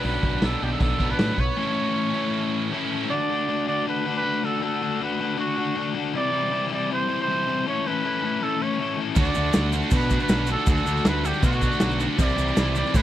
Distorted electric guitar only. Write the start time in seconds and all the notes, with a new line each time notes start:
Already playing: B2 F#3 B3 D4
0.41 B2 F#3 B3 D4
0.98 B2 F#3 B3 D4
1.57 A2 E3 A3 C#4 E4
2.14 A2 E3 A3 C#4 E4
2.71 A2 E3 A3 C#4 E4
9.15 D3 A3 D4 F#4
9.35 D3 A3 D4 F#4
9.53 D3 A3 D4 F#4
9.73 D3 A3 D4 F#4
9.90 D3 A3 D4 F#4
10.10 D3 A3 D4 F#4
10.29 D3 A3 D4 F#4
10.48 D3 A3 D4 F#4
10.66 D3 A3 D4 F#4
10.85 D3 A3 D4 F#4
11.05 D3 A3 D4 F#4
11.23 D3 A3 D4 F#4
11.42 D3 A3 D4 F#4
11.62 D3 A3 D4 F#4
11.81 D3 A3 D4 F#4
11.99 D3 A3 D4 F#4
12.18 C3 E3 G3 C4 E4
12.38 C3 E3 G3 C4 E4
12.56 C3 E3 G3 C4 E4
12.75 C3 E3 G3 C4 E4
12.93 C3 E3 G3 C4 E4